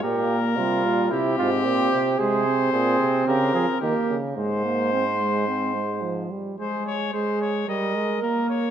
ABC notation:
X:1
M:4/4
L:1/8
Q:1/4=110
K:Cphr
V:1 name="Trumpet"
B4 G4 | [K:Ab] c4 B2 G z | c6- c z | c d c d e2 B d |]
V:2 name="Flugelhorn"
G2 F2 =E F G2 | [K:Ab] A2 A2 G A B z | c6- c z | A2 A2 B4 |]
V:3 name="Trombone" clef=bass
B,2 G,2 C4 | [K:Ab] A, C4- C B, z | A, B, C A, C A, F, G, | A,2 A,2 G, A, B,2 |]
V:4 name="Euphonium" clef=bass
B,,2 C, B,, C, A,, B,, C, | [K:Ab] C,2 B,, C, D, F, E, D, | A,,6- A,, z | z8 |]